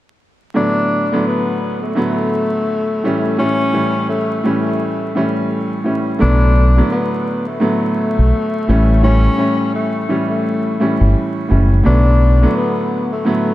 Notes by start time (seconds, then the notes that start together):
0.54 A2 D3 F#3 B3 D4
1.12 A2 D3 F#3 B3
1.27 B3
1.82 A3
1.95 A2 D3 F#3 B3
3.04 A2 E3 G3 C#4
3.38 A2 E3 G3 C#4
3.73 A2 E3 G3 C#4
4.09 A3
4.44 A2 E3 G3 C#4
4.66 A3
5.15 A2 E3 G3 C#4
5.84 A2 E3 G3 C#4
6.19 B1 A2 D3 F#3 B3 D4
6.77 A2 D3 F#3 B3
6.92 B3
7.47 A3
7.60 A2 D3 F#3 B3
8.19 B1
8.68 A1 A2 E3 G3 C#4
9.03 A2 E3 G3 C#4
9.37 A2 E3 G3 C#4
9.75 A3
10.09 A2 E3 G3 C#4
10.29 A3
10.80 A2 E3 G3 C#4
11.01 G1
11.49 F#1 A2 E3 G3 C#4
11.84 B1 A2 D3 F#3 B3 D4
12.42 A2 D3 F#3 B3
12.57 B3
13.12 A3
13.25 A2 D3 F#3 B3